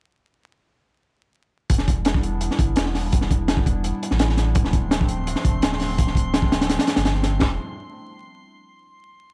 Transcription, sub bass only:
1.70 2.49 E1 loud
2.59 2.75 G1 medium
2.77 3.11 E1 medium
3.13 3.92 E1 loud
4.11 4.54 A1 loud
4.56 5.35 D1 loud
5.45 5.61 F1 medium
5.63 5.97 D1 medium
5.99 6.78 D1 loud
6.97 7.40 G1 medium
7.41 7.58 E1 loud

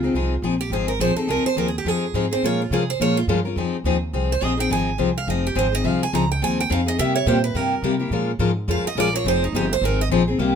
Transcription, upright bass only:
0.00 0.13 C#2 medium
0.14 0.42 C2 medium
0.42 0.70 A#1 medium
0.70 0.98 G#1 medium
1.00 1.15 A#1 medium
1.16 muted upright bass stroke soft
1.27 1.43 C2 medium
1.44 muted upright bass stroke soft
1.56 1.84 D#2 medium
1.85 2.13 F2 medium
2.14 2.41 G#2 medium
2.42 2.70 A#2 medium
2.71 2.98 C3 medium
3.00 3.27 A#2 medium
3.27 3.55 G2 medium
3.56 3.84 F2 medium
3.84 4.12 D#2 medium
4.13 4.41 C2 medium
4.42 4.69 A#1 medium
4.70 4.98 G#1 medium
4.99 5.26 C2 medium
5.27 5.55 F1 medium
5.56 5.83 G#1 medium
5.84 6.12 C2 medium
6.13 6.40 C#2 medium
6.42 6.69 D#2 medium
6.70 6.98 F2 medium
6.99 7.26 C3 medium
7.26 7.54 A#2 medium
7.55 7.82 G2 medium
7.82 8.10 C3 medium
8.10 8.38 A#2 medium
8.39 8.67 G#2 medium
8.68 8.83 F2 medium
8.84 muted upright bass stroke soft
8.95 9.24 A#1 medium
9.24 9.52 F1 medium
9.52 9.81 G1 medium
9.81 10.09 G#1 medium
10.10 10.38 A#1 medium
10.38 10.55 C2 medium

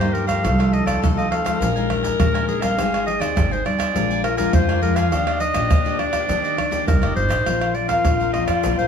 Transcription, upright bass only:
0.00 0.46 G2 medium
0.44 0.81 C2 loud
0.86 0.99 C2 medium
1.02 1.27 C2 medium
1.60 2.10 A#1 medium
2.20 2.78 A#1 medium
2.78 3.15 G#1 loud
3.20 3.33 D#2 medium
3.36 3.61 G#1 medium
3.95 4.44 A#1 medium
4.54 5.12 F2 medium
5.12 5.49 D#2 loud
5.54 5.67 A#1 medium
5.70 5.95 D#2 medium
6.29 6.79 D#3 medium
6.87 7.00 C2 medium
7.02 7.15 F1 medium
7.16 7.29 G1 medium
7.30 7.44 A#1 medium
7.46 7.96 A#1 medium
8.05 8.42 A#1 medium
8.48 8.61 F2 medium
8.64 8.76 A#1 medium
8.79 8.88 A#1 medium

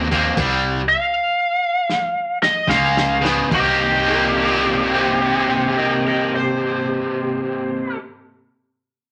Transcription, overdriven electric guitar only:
0.11 0.34 C3 medium
0.11 0.35 A#3 medium
0.37 0.80 C3 medium
0.37 0.81 G3 medium
2.68 3.16 C#3 medium
2.68 3.16 G#3 medium
3.21 3.48 C#3 medium
3.21 3.48 B3 medium
3.50 7.95 C3 medium
3.50 7.97 A#3 loud
3.50 7.98 D#4 loud
3.50 7.99 G4 loud

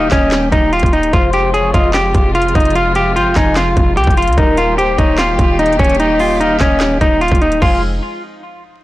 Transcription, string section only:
0.00 1.10 D#3 medium
0.00 1.10 G3 medium
0.00 1.10 A#3 medium
0.00 1.10 G4 medium
1.13 4.34 C3 medium
1.13 4.34 F3 medium
1.13 4.34 G#3 medium
1.13 4.34 F4 medium
4.38 7.59 D#3 medium
4.38 7.59 G3 medium
4.38 7.59 A#3 medium
4.38 7.59 G4 loud
7.62 7.81 F3 medium
7.62 7.81 G#3 medium
7.62 7.81 C4 medium
7.62 7.81 G#4 medium

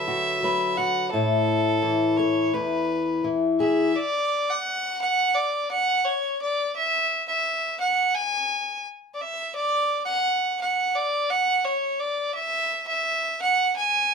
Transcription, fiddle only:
0.00 0.78 E5 medium
0.77 1.11 F#5 medium
1.11 2.19 A4 medium
2.17 2.55 C#5 medium
2.54 3.24 B4 medium
3.61 3.98 E5 medium
3.96 4.52 D5 medium
4.50 5.01 F#5 medium
5.01 5.37 F#5 medium
5.35 5.70 D5 medium
5.71 6.07 F#5 medium
6.05 6.41 C#5 medium
6.42 6.74 D5 medium
6.76 7.25 E5 medium
7.28 7.77 E5 medium
7.81 8.17 F#5 medium
8.15 8.86 G#5 loud
9.14 9.23 D5 medium
9.21 9.54 E5 medium
9.55 10.05 D5 loud
10.05 10.56 F#5 medium
10.61 10.97 F#5 medium
10.95 11.32 D5 medium
11.30 11.66 F#5 medium
11.64 12.01 C#5 medium
12.00 12.34 D5 medium
12.34 12.85 E5 loud
12.88 13.38 E5 medium
13.42 13.75 F#5 medium
13.77 14.14 G#5 medium

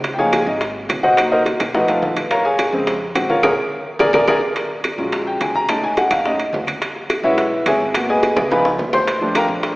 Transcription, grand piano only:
0.14 0.37 F3 medium
0.14 0.16 G5 medium
0.19 0.38 A#3 medium
0.19 0.38 D#4 medium
0.19 0.45 G#4 medium
0.19 0.45 C#5 medium
0.19 0.45 F5 medium
0.19 0.45 G#5 loud
0.48 0.61 D#4 medium
0.48 0.61 D#5 medium
1.03 1.30 F#4 medium
1.03 1.30 C5 medium
1.03 1.30 D#5 medium
1.03 1.30 F#5 loud
1.17 1.58 F#3 medium
1.17 1.58 A#3 soft
1.17 1.30 D#4 soft
1.32 1.40 D#4 medium
1.32 1.41 A#4 medium
1.32 1.41 C5 medium
1.32 1.40 D#5 medium
1.74 2.14 F3 medium
1.74 2.15 A3 medium
1.74 2.15 D#4 medium
1.74 1.89 F#4 medium
1.74 1.88 B4 medium
1.74 1.88 D#5 medium
1.74 1.88 F#5 medium
1.89 2.28 F4 medium
1.89 2.28 A4 medium
1.89 2.28 B4 medium
1.89 2.28 F5 medium
2.31 2.45 A#4 medium
2.31 2.44 C#5 medium
2.31 2.44 F5 medium
2.31 2.44 A#5 medium
2.45 2.84 G#4 medium
2.45 2.84 C#5 medium
2.45 2.84 F5 medium
2.45 2.84 G#5 medium
2.73 2.92 C#3 medium
2.73 2.92 G#3 medium
2.73 2.92 C4 medium
3.15 3.28 C#3 soft
3.15 3.28 G#3 soft
3.15 3.28 C4 medium
3.15 3.29 F#4 medium
3.15 3.29 F#5 medium
3.30 3.43 F4 medium
3.30 3.42 A#4 medium
3.30 3.42 C#5 medium
3.30 3.43 F5 medium
3.43 3.52 G#4 medium
3.43 3.52 A#4 medium
3.43 3.52 C#5 medium
4.00 4.09 G#4 loud
4.00 4.09 A#4 loud
4.00 4.09 D5 loud
4.14 4.23 G#4 medium
4.14 4.23 A#4 loud
4.14 4.23 D5 loud
4.28 4.37 G#4 loud
4.28 4.37 A#4 loud
4.28 4.37 D5 loud
4.99 5.66 F#3 medium
4.99 5.66 G#3 soft
4.99 5.66 C#4 medium
4.99 5.66 F4 medium
5.27 5.41 G5 medium
5.41 5.55 G#5 medium
5.55 5.69 A#5 loud
5.69 6.25 A3 soft
5.69 6.25 C#4 soft
5.69 6.26 D#4 medium
5.69 5.83 A5 medium
5.84 5.97 G#5 loud
5.98 6.11 F#5 loud
6.12 6.25 F5 medium
6.26 6.38 A3 soft
6.26 6.39 C#4 soft
6.26 6.39 D#4 medium
6.26 6.52 D#5 medium
7.23 7.43 G#3 medium
7.23 7.43 C#4 medium
7.23 7.63 E4 medium
7.23 7.43 F#4 medium
7.23 7.64 B4 medium
7.23 7.64 C#5 medium
7.23 7.63 E5 medium
7.67 7.81 G#4 medium
7.67 7.81 C#5 medium
7.67 7.81 E5 medium
7.67 7.80 G#5 medium
7.95 8.35 A#3 soft
7.95 8.35 B3 soft
7.95 8.36 F#4 medium
8.10 8.49 G#4 medium
8.10 8.48 B4 medium
8.10 8.49 D#5 medium
8.10 8.48 G#5 medium
8.51 8.69 F3 medium
8.51 8.70 B3 medium
8.51 8.70 D#4 medium
8.51 8.65 B4 medium
8.51 8.65 F5 medium
8.51 8.65 G#5 medium
8.51 8.65 B5 medium
8.94 9.33 C5 medium
8.94 9.33 C6 loud
9.21 9.76 F3 medium
9.21 9.76 G3 medium
9.21 9.76 A3 medium
9.21 9.76 D4 medium
9.36 9.44 A#4 medium
9.36 9.45 F5 medium
9.36 9.44 G5 medium
9.36 9.44 A#5 loud

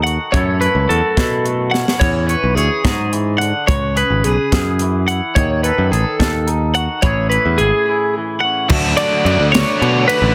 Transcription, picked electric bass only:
0.00 0.17 D#2 medium
0.33 0.67 F#2 medium
0.75 0.86 C#2 medium
0.89 1.00 E2 medium
1.17 1.84 B2 medium
2.01 2.34 E2 medium
2.44 2.54 B1 medium
2.56 2.68 D2 medium
2.84 3.52 G#2 medium
3.68 4.02 C#2 medium
4.10 4.22 G#1 medium
4.25 4.36 B1 medium
4.52 5.19 F#2 medium
5.37 5.70 D#2 medium
5.78 5.89 F#2 medium
5.92 6.03 A1 medium
6.19 6.86 D#2 medium
7.03 7.37 A1 medium
7.45 7.57 E2 medium
7.59 7.71 G#1 medium
8.70 8.93 D2 loud
9.25 9.37 F#2 medium
9.40 9.62 D2 medium
9.82 10.04 B2 medium
10.22 10.35 A1 medium

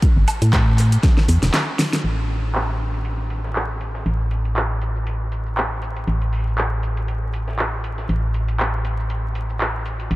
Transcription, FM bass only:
0.17 0.24 G1 loud
0.42 0.98 A2 loud
1.29 1.38 E2 medium
1.43 1.50 E1 medium
2.04 4.04 A1 medium
4.06 6.05 A1 medium
6.08 8.07 A1 medium
8.09 10.09 A1 medium
10.11 10.16 A1 medium

